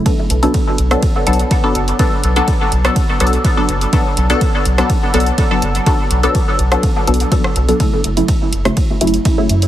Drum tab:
RD |x-------x-------x-------x-------|x-------x-------x-------x-------|x-------x-------x-------x-------|x-------x-------x-------x-------|
HH |x---x-x-x---x-x-x---xxx-x---x-x-|x---x-x-x---x-x-x---xxx-x---x-x-|x---x-x-x---x-x-x---xxx-x---x-x-|x---x-x-x---x-x-x---xxx-x---x-x-|
SD |--------------r-----------------|--------------r-----------------|--------------r-----------------|--------------r-----------r-----|
BD |o-------o-------o-------o-------|o-------o-------o-------o-------|o-------o-------o-------o-------|o-------o-------o-------o-------|

RD |x-------x-------x-------x-------|
HH |x---x-x-x---x-x-x---xxx-x---x-x-|
SD |--------------r-----------------|
BD |o-------o-------o-------o-------|